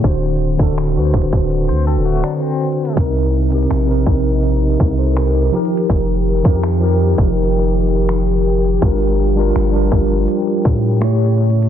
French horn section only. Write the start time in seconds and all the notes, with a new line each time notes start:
0.03 D3 C4 F#4
2.96 C3 D#4 A#4
5.53 D#3 G4
8.82 F3
11.01 C#3 A3